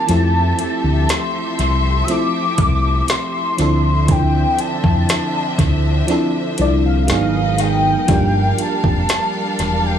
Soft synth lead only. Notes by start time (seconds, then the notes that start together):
Already playing: A5
1.10 C6
2.04 E6
2.10 D6
3.10 C6
4.10 G5
4.60 A5
6.61 D5
6.86 F5
7.60 G5
8.60 A5
9.86 G5